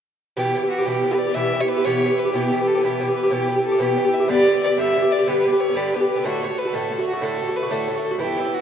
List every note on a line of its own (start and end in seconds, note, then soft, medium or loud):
0.37 0.53 B2 medium
0.37 0.54 E3 medium
0.37 0.55 B3 medium
0.37 0.68 G4 loud
0.37 0.56 G4 medium
0.54 0.62 B2 medium
0.54 0.63 E3 medium
0.54 0.62 B3 soft
0.54 0.61 G4 medium
0.62 0.80 E3 soft
0.62 0.79 B3 soft
0.62 0.77 G4 soft
0.70 0.86 F#4 medium
0.78 0.86 E3 soft
0.78 0.87 B3 soft
0.78 0.86 G4 soft
0.85 1.02 B2 medium
0.85 1.04 E3 medium
0.85 1.05 B3 medium
0.85 1.12 G4 medium
0.85 1.06 G4 medium
1.03 1.12 B2 soft
1.03 1.12 E3 soft
1.03 1.13 B3 soft
1.03 1.10 G4 soft
1.11 1.28 B3 soft
1.11 1.26 G4 soft
1.11 1.20 B4 medium
1.15 1.29 E3 soft
1.15 1.36 D5 medium
1.27 1.35 E3 soft
1.27 1.35 B3 soft
1.27 1.35 G4 soft
1.35 1.52 B2 medium
1.35 1.53 E3 medium
1.35 1.54 B3 medium
1.35 1.55 G4 medium
1.35 1.62 E5 loud
1.53 1.61 B2 medium
1.53 1.62 E3 medium
1.53 1.62 B3 soft
1.53 1.59 G4 medium
1.61 1.78 E3 soft
1.61 1.77 B3 soft
1.61 1.75 G4 soft
1.61 1.70 C#5 medium
1.68 1.87 B4 medium
1.76 1.84 E3 soft
1.76 1.85 B3 soft
1.76 1.84 G4 soft
1.84 2.01 B2 medium
1.84 2.02 E3 medium
1.84 2.03 B3 medium
1.84 2.04 G4 medium
1.84 2.20 C#5 medium
2.02 2.10 B2 soft
2.02 2.11 E3 medium
2.02 2.11 B3 soft
2.02 2.08 G4 soft
2.10 2.27 E3 soft
2.10 2.26 B3 soft
2.10 2.24 G4 soft
2.18 2.33 B4 medium
2.25 2.33 E3 soft
2.25 2.34 B3 soft
2.25 2.33 G4 soft
2.33 2.50 B2 medium
2.33 2.51 E3 medium
2.33 2.52 B3 medium
2.33 2.69 G4 medium
2.33 2.53 G4 medium
2.52 2.59 B2 medium
2.52 2.60 E3 medium
2.52 2.60 B3 medium
2.52 2.58 G4 medium
2.60 2.76 E3 soft
2.60 2.75 B3 soft
2.60 2.74 G4 soft
2.67 2.83 A4 medium
2.75 2.83 E3 soft
2.75 2.83 B3 medium
2.75 2.82 G4 soft
2.81 2.99 B2 medium
2.81 3.00 E3 medium
2.81 3.02 B3 medium
2.81 3.14 G4 medium
2.85 3.02 G4 medium
3.00 3.08 B2 medium
3.00 3.09 E3 soft
3.00 3.08 B3 medium
3.00 3.07 G4 medium
3.08 3.25 E3 soft
3.08 3.24 B3 soft
3.08 3.22 G4 soft
3.15 3.30 B4 medium
3.23 3.30 E3 soft
3.23 3.31 B3 soft
3.23 3.31 G4 soft
3.31 3.47 B2 medium
3.31 3.49 E3 medium
3.31 3.50 B3 medium
3.31 3.62 G4 medium
3.31 3.50 G4 medium
3.48 3.56 B2 soft
3.48 3.57 E3 soft
3.48 3.57 B3 medium
3.48 3.55 G4 soft
3.56 3.73 E3 soft
3.56 3.72 B3 soft
3.56 3.70 G4 soft
3.65 3.82 A4 medium
3.71 3.79 E3 soft
3.71 3.80 B3 soft
3.71 3.80 G4 medium
3.79 3.96 B2 medium
3.79 3.97 E3 medium
3.79 3.98 B3 medium
3.79 4.15 G4 medium
3.79 3.99 G4 medium
3.97 4.05 B2 medium
3.97 4.06 E3 soft
3.97 4.05 B3 soft
3.97 4.03 G4 soft
4.04 4.22 E3 soft
4.04 4.21 B3 soft
4.04 4.19 G4 medium
4.14 4.29 E5 medium
4.20 4.28 E3 soft
4.20 4.28 B3 soft
4.20 4.28 G4 soft
4.28 4.45 G2 medium
4.28 4.46 D3 medium
4.28 4.47 B3 medium
4.28 4.48 G4 medium
4.28 4.60 D5 loud
4.46 4.54 G2 soft
4.46 4.55 D3 medium
4.46 4.54 B3 medium
4.46 4.52 G4 medium
4.53 4.71 D3 soft
4.53 4.70 B3 soft
4.53 4.68 G4 soft
4.63 4.77 D5 medium
4.69 4.77 D3 soft
4.69 4.78 B3 soft
4.69 4.77 G4 soft
4.77 4.93 G2 medium
4.77 4.95 D3 medium
4.77 4.96 B3 medium
4.77 4.97 G4 medium
4.77 5.13 E5 medium
4.95 5.03 G2 medium
4.95 5.04 D3 medium
4.95 5.03 B3 medium
4.95 5.01 G4 medium
5.02 5.20 D3 soft
5.02 5.19 B3 soft
5.02 5.17 G4 medium
5.12 5.29 D5 medium
5.19 5.26 D3 soft
5.19 5.27 B3 soft
5.19 5.26 G4 medium
5.27 5.43 G2 medium
5.27 5.44 D3 medium
5.27 5.45 B3 medium
5.27 5.46 G4 medium
5.27 5.38 B4 medium
5.39 5.50 B4 medium
5.44 5.52 G2 soft
5.44 5.53 D3 soft
5.44 5.53 B3 medium
5.44 5.51 G4 medium
5.50 5.68 B3 soft
5.50 5.66 G4 soft
5.50 5.62 B4 medium
5.56 5.69 D3 soft
5.60 5.78 C#5 medium
5.67 5.74 D3 soft
5.67 5.75 B3 soft
5.67 5.75 G4 soft
5.75 5.91 G2 medium
5.75 5.93 D3 medium
5.75 5.94 B3 medium
5.75 5.94 G4 medium
5.75 5.95 D5 medium
5.92 6.01 G2 soft
5.92 6.01 D3 medium
5.92 6.01 B3 medium
5.92 5.99 G4 medium
5.92 6.09 B4 medium
6.00 6.18 D3 soft
6.00 6.16 B3 soft
6.00 6.15 G4 soft
6.10 6.26 B4 medium
6.16 6.24 D3 soft
6.16 6.25 B3 soft
6.16 6.24 G4 soft
6.24 6.41 A2 medium
6.24 6.43 D3 medium
6.24 6.43 A3 medium
6.24 6.44 F#4 medium
6.24 6.45 A4 medium
6.42 6.50 A2 medium
6.42 6.51 D3 medium
6.42 6.50 A3 medium
6.42 6.48 F#4 medium
6.42 6.60 C#5 medium
6.49 6.67 D3 soft
6.49 6.66 A3 soft
6.49 6.64 F#4 soft
6.58 6.75 B4 medium
6.65 6.72 D3 soft
6.65 6.73 A3 soft
6.65 6.73 F#4 soft
6.73 6.89 A2 medium
6.73 6.91 D3 medium
6.73 6.92 A3 medium
6.73 6.93 F#4 medium
6.73 7.07 A4 medium
6.90 6.99 A2 soft
6.90 6.99 D3 medium
6.90 6.99 A3 soft
6.90 6.97 F#4 medium
6.98 7.16 D3 soft
6.98 7.14 A3 soft
6.98 7.12 F#4 soft
7.08 7.24 F#4 medium
7.13 7.21 D3 soft
7.13 7.22 A3 soft
7.13 7.22 F#4 medium
7.21 7.38 A2 medium
7.21 7.40 D3 medium
7.21 7.41 A3 medium
7.21 7.41 F#4 medium
7.21 7.58 A4 medium
7.39 7.48 A2 soft
7.39 7.48 D3 soft
7.39 7.48 A3 soft
7.39 7.46 F#4 soft
7.48 7.65 D3 soft
7.48 7.63 A3 soft
7.48 7.61 F#4 soft
7.56 7.73 B4 medium
7.63 7.70 D3 soft
7.63 7.70 A3 soft
7.63 7.71 F#4 soft
7.70 7.87 A2 medium
7.70 7.88 D3 medium
7.70 7.89 A3 medium
7.70 7.90 F#4 medium
7.70 8.03 A4 medium
7.88 7.96 A2 medium
7.88 7.97 D3 soft
7.88 7.96 A3 soft
7.88 7.94 F#4 soft
7.95 8.13 D3 soft
7.95 8.12 A3 soft
7.95 8.10 F#4 soft
8.04 8.19 A4 medium
8.11 8.19 D3 soft
8.11 8.20 A3 soft
8.11 8.19 F#4 soft
8.18 8.35 G2 medium
8.18 8.36 E3 medium
8.18 8.37 B3 medium
8.18 8.38 E4 medium
8.18 8.55 G4 medium
8.36 8.45 G2 medium
8.36 8.45 E3 medium
8.36 8.45 B3 medium
8.36 8.43 E4 medium
8.45 8.61 E3 soft
8.45 8.60 B3 soft
8.45 8.58 E4 soft
8.54 8.61 F#4 medium